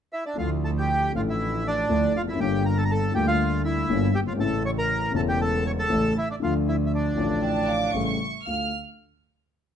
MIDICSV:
0, 0, Header, 1, 6, 480
1, 0, Start_track
1, 0, Key_signature, -1, "minor"
1, 0, Tempo, 511073
1, 341, Time_signature, 4, 2, 24, 8
1, 1779, Tempo, 500417
1, 5619, Tempo, 509771
1, 9251, End_track
2, 0, Start_track
2, 0, Title_t, "Violin section"
2, 0, Program_c, 0, 48
2, 7056, Note_on_c, 0, 81, 67
2, 7282, Note_off_c, 0, 81, 0
2, 7294, Note_on_c, 0, 86, 79
2, 7533, Note_on_c, 0, 85, 87
2, 7542, Note_off_c, 0, 86, 0
2, 7649, Note_off_c, 0, 85, 0
2, 7661, Note_on_c, 0, 85, 65
2, 8004, Note_off_c, 0, 85, 0
2, 8021, Note_on_c, 0, 89, 58
2, 8250, Note_off_c, 0, 89, 0
2, 9251, End_track
3, 0, Start_track
3, 0, Title_t, "Vibraphone"
3, 0, Program_c, 1, 11
3, 7051, Note_on_c, 1, 79, 70
3, 7289, Note_on_c, 1, 77, 83
3, 7304, Note_off_c, 1, 79, 0
3, 7547, Note_off_c, 1, 77, 0
3, 8031, Note_on_c, 1, 77, 57
3, 8255, Note_off_c, 1, 77, 0
3, 9251, End_track
4, 0, Start_track
4, 0, Title_t, "Bandoneon"
4, 0, Program_c, 2, 23
4, 119, Note_on_c, 2, 76, 63
4, 124, Note_on_c, 2, 64, 46
4, 224, Note_off_c, 2, 64, 0
4, 233, Note_off_c, 2, 76, 0
4, 240, Note_on_c, 2, 74, 57
4, 253, Note_on_c, 2, 62, 41
4, 343, Note_off_c, 2, 74, 0
4, 350, Note_off_c, 2, 62, 0
4, 360, Note_on_c, 2, 77, 61
4, 371, Note_on_c, 2, 65, 44
4, 465, Note_off_c, 2, 77, 0
4, 473, Note_off_c, 2, 65, 0
4, 606, Note_on_c, 2, 81, 62
4, 617, Note_on_c, 2, 69, 46
4, 655, Note_off_c, 2, 81, 0
4, 664, Note_off_c, 2, 69, 0
4, 733, Note_on_c, 2, 79, 67
4, 741, Note_on_c, 2, 67, 51
4, 1054, Note_off_c, 2, 79, 0
4, 1058, Note_off_c, 2, 67, 0
4, 1091, Note_on_c, 2, 77, 57
4, 1100, Note_on_c, 2, 65, 50
4, 1138, Note_off_c, 2, 77, 0
4, 1145, Note_off_c, 2, 65, 0
4, 1215, Note_on_c, 2, 76, 60
4, 1221, Note_on_c, 2, 64, 50
4, 1537, Note_off_c, 2, 64, 0
4, 1568, Note_off_c, 2, 76, 0
4, 1569, Note_on_c, 2, 74, 75
4, 1576, Note_on_c, 2, 62, 51
4, 2005, Note_off_c, 2, 62, 0
4, 2040, Note_on_c, 2, 77, 71
4, 2048, Note_off_c, 2, 74, 0
4, 2048, Note_on_c, 2, 65, 60
4, 2090, Note_off_c, 2, 77, 0
4, 2096, Note_off_c, 2, 65, 0
4, 2155, Note_on_c, 2, 76, 57
4, 2161, Note_on_c, 2, 64, 46
4, 2260, Note_off_c, 2, 76, 0
4, 2263, Note_off_c, 2, 64, 0
4, 2267, Note_on_c, 2, 79, 70
4, 2271, Note_on_c, 2, 67, 59
4, 2488, Note_off_c, 2, 67, 0
4, 2508, Note_on_c, 2, 82, 68
4, 2510, Note_off_c, 2, 79, 0
4, 2516, Note_on_c, 2, 70, 54
4, 2619, Note_off_c, 2, 70, 0
4, 2625, Note_on_c, 2, 81, 72
4, 2626, Note_off_c, 2, 82, 0
4, 2632, Note_on_c, 2, 69, 54
4, 2687, Note_off_c, 2, 69, 0
4, 2689, Note_off_c, 2, 81, 0
4, 2694, Note_on_c, 2, 82, 59
4, 2754, Note_on_c, 2, 81, 70
4, 2755, Note_off_c, 2, 82, 0
4, 2762, Note_on_c, 2, 69, 59
4, 2967, Note_off_c, 2, 69, 0
4, 2982, Note_on_c, 2, 79, 71
4, 2985, Note_off_c, 2, 81, 0
4, 2985, Note_on_c, 2, 67, 53
4, 3092, Note_off_c, 2, 67, 0
4, 3102, Note_on_c, 2, 77, 73
4, 3103, Note_off_c, 2, 79, 0
4, 3106, Note_on_c, 2, 65, 57
4, 3435, Note_off_c, 2, 77, 0
4, 3436, Note_off_c, 2, 65, 0
4, 3458, Note_on_c, 2, 76, 74
4, 3462, Note_on_c, 2, 64, 54
4, 3905, Note_off_c, 2, 64, 0
4, 3941, Note_on_c, 2, 67, 62
4, 3944, Note_on_c, 2, 79, 77
4, 3950, Note_off_c, 2, 76, 0
4, 3994, Note_off_c, 2, 67, 0
4, 3996, Note_off_c, 2, 79, 0
4, 4062, Note_on_c, 2, 65, 53
4, 4065, Note_on_c, 2, 77, 66
4, 4114, Note_off_c, 2, 65, 0
4, 4117, Note_off_c, 2, 77, 0
4, 4183, Note_on_c, 2, 81, 73
4, 4185, Note_on_c, 2, 69, 58
4, 4402, Note_off_c, 2, 69, 0
4, 4402, Note_off_c, 2, 81, 0
4, 4428, Note_on_c, 2, 73, 59
4, 4429, Note_on_c, 2, 85, 73
4, 4479, Note_off_c, 2, 73, 0
4, 4480, Note_off_c, 2, 85, 0
4, 4547, Note_on_c, 2, 70, 60
4, 4552, Note_on_c, 2, 82, 72
4, 4876, Note_off_c, 2, 70, 0
4, 4879, Note_off_c, 2, 82, 0
4, 4910, Note_on_c, 2, 69, 61
4, 4911, Note_on_c, 2, 81, 75
4, 4961, Note_off_c, 2, 69, 0
4, 4961, Note_off_c, 2, 81, 0
4, 5030, Note_on_c, 2, 67, 54
4, 5035, Note_on_c, 2, 79, 70
4, 5135, Note_off_c, 2, 67, 0
4, 5149, Note_off_c, 2, 79, 0
4, 5155, Note_on_c, 2, 81, 75
4, 5159, Note_on_c, 2, 69, 66
4, 5373, Note_off_c, 2, 69, 0
4, 5393, Note_on_c, 2, 73, 59
4, 5394, Note_off_c, 2, 81, 0
4, 5394, Note_on_c, 2, 85, 71
4, 5444, Note_off_c, 2, 73, 0
4, 5445, Note_off_c, 2, 85, 0
4, 5515, Note_on_c, 2, 69, 63
4, 5519, Note_on_c, 2, 81, 84
4, 5842, Note_off_c, 2, 69, 0
4, 5879, Note_off_c, 2, 81, 0
4, 5882, Note_on_c, 2, 64, 57
4, 5891, Note_on_c, 2, 76, 73
4, 5982, Note_off_c, 2, 64, 0
4, 5987, Note_off_c, 2, 76, 0
4, 6003, Note_on_c, 2, 62, 50
4, 6007, Note_on_c, 2, 74, 60
4, 6051, Note_off_c, 2, 62, 0
4, 6054, Note_off_c, 2, 74, 0
4, 6123, Note_on_c, 2, 77, 62
4, 6124, Note_on_c, 2, 65, 54
4, 6224, Note_off_c, 2, 77, 0
4, 6225, Note_off_c, 2, 65, 0
4, 6357, Note_on_c, 2, 64, 51
4, 6363, Note_on_c, 2, 76, 59
4, 6430, Note_off_c, 2, 64, 0
4, 6434, Note_off_c, 2, 76, 0
4, 6527, Note_on_c, 2, 76, 45
4, 6583, Note_off_c, 2, 76, 0
4, 6603, Note_on_c, 2, 62, 43
4, 6610, Note_on_c, 2, 74, 66
4, 7520, Note_off_c, 2, 62, 0
4, 7524, Note_off_c, 2, 74, 0
4, 9251, End_track
5, 0, Start_track
5, 0, Title_t, "Upright piano"
5, 0, Program_c, 3, 0
5, 332, Note_on_c, 3, 50, 57
5, 342, Note_on_c, 3, 53, 47
5, 350, Note_on_c, 3, 38, 64
5, 360, Note_on_c, 3, 57, 43
5, 372, Note_on_c, 3, 64, 60
5, 1028, Note_off_c, 3, 53, 0
5, 1032, Note_off_c, 3, 38, 0
5, 1032, Note_off_c, 3, 50, 0
5, 1037, Note_off_c, 3, 57, 0
5, 1043, Note_off_c, 3, 64, 0
5, 1053, Note_on_c, 3, 50, 54
5, 1065, Note_on_c, 3, 53, 50
5, 1073, Note_on_c, 3, 45, 61
5, 1076, Note_on_c, 3, 33, 58
5, 1078, Note_on_c, 3, 57, 47
5, 1088, Note_on_c, 3, 64, 59
5, 1738, Note_off_c, 3, 50, 0
5, 1744, Note_off_c, 3, 53, 0
5, 1748, Note_off_c, 3, 45, 0
5, 1750, Note_off_c, 3, 33, 0
5, 1751, Note_off_c, 3, 57, 0
5, 1756, Note_off_c, 3, 64, 0
5, 1772, Note_on_c, 3, 53, 45
5, 1775, Note_on_c, 3, 50, 65
5, 1777, Note_on_c, 3, 57, 48
5, 1778, Note_on_c, 3, 64, 58
5, 1780, Note_on_c, 3, 38, 68
5, 1978, Note_off_c, 3, 53, 0
5, 1981, Note_off_c, 3, 57, 0
5, 1981, Note_off_c, 3, 64, 0
5, 1982, Note_off_c, 3, 38, 0
5, 1982, Note_off_c, 3, 50, 0
5, 2087, Note_on_c, 3, 40, 47
5, 2139, Note_on_c, 3, 41, 54
5, 2144, Note_off_c, 3, 40, 0
5, 2192, Note_on_c, 3, 42, 65
5, 2200, Note_off_c, 3, 41, 0
5, 2237, Note_on_c, 3, 50, 61
5, 2250, Note_on_c, 3, 55, 54
5, 2256, Note_off_c, 3, 42, 0
5, 2257, Note_on_c, 3, 31, 63
5, 2260, Note_on_c, 3, 43, 66
5, 2263, Note_on_c, 3, 58, 48
5, 2277, Note_on_c, 3, 65, 60
5, 2929, Note_off_c, 3, 50, 0
5, 2936, Note_off_c, 3, 55, 0
5, 2939, Note_off_c, 3, 31, 0
5, 2941, Note_off_c, 3, 43, 0
5, 2942, Note_off_c, 3, 58, 0
5, 2949, Note_off_c, 3, 65, 0
5, 2949, Note_on_c, 3, 50, 56
5, 2963, Note_on_c, 3, 55, 50
5, 2964, Note_off_c, 3, 50, 0
5, 2972, Note_on_c, 3, 38, 68
5, 2973, Note_on_c, 3, 50, 67
5, 2974, Note_on_c, 3, 58, 54
5, 2987, Note_on_c, 3, 65, 66
5, 3653, Note_off_c, 3, 55, 0
5, 3658, Note_off_c, 3, 38, 0
5, 3659, Note_off_c, 3, 50, 0
5, 3659, Note_off_c, 3, 58, 0
5, 3665, Note_off_c, 3, 65, 0
5, 3694, Note_on_c, 3, 31, 68
5, 3696, Note_on_c, 3, 55, 49
5, 3697, Note_on_c, 3, 58, 50
5, 3698, Note_on_c, 3, 43, 65
5, 3698, Note_on_c, 3, 50, 56
5, 3703, Note_on_c, 3, 65, 62
5, 3896, Note_off_c, 3, 31, 0
5, 3897, Note_off_c, 3, 55, 0
5, 3898, Note_off_c, 3, 43, 0
5, 3898, Note_off_c, 3, 50, 0
5, 3898, Note_off_c, 3, 58, 0
5, 3900, Note_off_c, 3, 65, 0
5, 3997, Note_on_c, 3, 30, 46
5, 4051, Note_on_c, 3, 31, 57
5, 4056, Note_off_c, 3, 30, 0
5, 4107, Note_on_c, 3, 32, 64
5, 4112, Note_off_c, 3, 31, 0
5, 4145, Note_on_c, 3, 49, 55
5, 4154, Note_on_c, 3, 52, 54
5, 4160, Note_on_c, 3, 45, 68
5, 4164, Note_on_c, 3, 33, 66
5, 4168, Note_on_c, 3, 61, 49
5, 4171, Note_off_c, 3, 32, 0
5, 4181, Note_on_c, 3, 64, 64
5, 4843, Note_off_c, 3, 49, 0
5, 4848, Note_off_c, 3, 52, 0
5, 4851, Note_off_c, 3, 45, 0
5, 4853, Note_off_c, 3, 33, 0
5, 4855, Note_off_c, 3, 61, 0
5, 4861, Note_off_c, 3, 64, 0
5, 4867, Note_on_c, 3, 49, 58
5, 4883, Note_on_c, 3, 52, 51
5, 4889, Note_on_c, 3, 40, 62
5, 4892, Note_on_c, 3, 28, 72
5, 4893, Note_on_c, 3, 57, 47
5, 4909, Note_on_c, 3, 64, 64
5, 5570, Note_off_c, 3, 49, 0
5, 5578, Note_off_c, 3, 52, 0
5, 5581, Note_off_c, 3, 40, 0
5, 5582, Note_off_c, 3, 28, 0
5, 5583, Note_off_c, 3, 57, 0
5, 5591, Note_off_c, 3, 64, 0
5, 5614, Note_on_c, 3, 52, 54
5, 5616, Note_on_c, 3, 33, 66
5, 5616, Note_on_c, 3, 45, 66
5, 5617, Note_on_c, 3, 49, 55
5, 5618, Note_on_c, 3, 57, 50
5, 5622, Note_on_c, 3, 64, 57
5, 5818, Note_off_c, 3, 33, 0
5, 5818, Note_off_c, 3, 45, 0
5, 5818, Note_off_c, 3, 52, 0
5, 5819, Note_off_c, 3, 49, 0
5, 5820, Note_off_c, 3, 57, 0
5, 5821, Note_off_c, 3, 64, 0
5, 6090, Note_on_c, 3, 50, 59
5, 6100, Note_on_c, 3, 53, 47
5, 6104, Note_off_c, 3, 50, 0
5, 6109, Note_on_c, 3, 38, 62
5, 6112, Note_on_c, 3, 50, 71
5, 6115, Note_on_c, 3, 57, 46
5, 6126, Note_on_c, 3, 65, 58
5, 6779, Note_off_c, 3, 53, 0
5, 6783, Note_off_c, 3, 38, 0
5, 6785, Note_off_c, 3, 50, 0
5, 6786, Note_off_c, 3, 57, 0
5, 6792, Note_off_c, 3, 65, 0
5, 6799, Note_on_c, 3, 50, 55
5, 6813, Note_on_c, 3, 53, 51
5, 6819, Note_on_c, 3, 33, 71
5, 6820, Note_on_c, 3, 45, 60
5, 6828, Note_on_c, 3, 57, 49
5, 6838, Note_on_c, 3, 65, 63
5, 7499, Note_off_c, 3, 50, 0
5, 7506, Note_off_c, 3, 53, 0
5, 7510, Note_off_c, 3, 33, 0
5, 7510, Note_off_c, 3, 45, 0
5, 7514, Note_off_c, 3, 57, 0
5, 7519, Note_off_c, 3, 65, 0
5, 7545, Note_on_c, 3, 33, 56
5, 7545, Note_on_c, 3, 49, 53
5, 7546, Note_on_c, 3, 57, 50
5, 7547, Note_on_c, 3, 45, 60
5, 7548, Note_on_c, 3, 55, 53
5, 7552, Note_on_c, 3, 64, 61
5, 7750, Note_off_c, 3, 49, 0
5, 7751, Note_off_c, 3, 33, 0
5, 7751, Note_off_c, 3, 45, 0
5, 7751, Note_off_c, 3, 57, 0
5, 7752, Note_off_c, 3, 55, 0
5, 7754, Note_off_c, 3, 64, 0
5, 8041, Note_on_c, 3, 38, 39
5, 8043, Note_on_c, 3, 65, 43
5, 8044, Note_on_c, 3, 62, 35
5, 8045, Note_on_c, 3, 57, 35
5, 8239, Note_off_c, 3, 38, 0
5, 8240, Note_off_c, 3, 62, 0
5, 8240, Note_off_c, 3, 65, 0
5, 8241, Note_off_c, 3, 57, 0
5, 9251, End_track
6, 0, Start_track
6, 0, Title_t, "Double bass"
6, 0, Program_c, 4, 43
6, 336, Note_on_c, 4, 38, 81
6, 1025, Note_off_c, 4, 38, 0
6, 1069, Note_on_c, 4, 33, 73
6, 1746, Note_off_c, 4, 33, 0
6, 1772, Note_on_c, 4, 38, 69
6, 1978, Note_off_c, 4, 38, 0
6, 2017, Note_on_c, 4, 29, 57
6, 2240, Note_off_c, 4, 29, 0
6, 2246, Note_on_c, 4, 31, 82
6, 2934, Note_off_c, 4, 31, 0
6, 2967, Note_on_c, 4, 38, 82
6, 3655, Note_off_c, 4, 38, 0
6, 3688, Note_on_c, 4, 31, 83
6, 3893, Note_off_c, 4, 31, 0
6, 3932, Note_on_c, 4, 31, 53
6, 4154, Note_off_c, 4, 31, 0
6, 4159, Note_on_c, 4, 33, 76
6, 4850, Note_off_c, 4, 33, 0
6, 4890, Note_on_c, 4, 28, 79
6, 5581, Note_off_c, 4, 28, 0
6, 5620, Note_on_c, 4, 33, 82
6, 5820, Note_off_c, 4, 33, 0
6, 6100, Note_on_c, 4, 38, 75
6, 6779, Note_off_c, 4, 38, 0
6, 6805, Note_on_c, 4, 33, 77
6, 7502, Note_off_c, 4, 33, 0
6, 7542, Note_on_c, 4, 33, 63
6, 7749, Note_off_c, 4, 33, 0
6, 8034, Note_on_c, 4, 38, 45
6, 8235, Note_off_c, 4, 38, 0
6, 9251, End_track
0, 0, End_of_file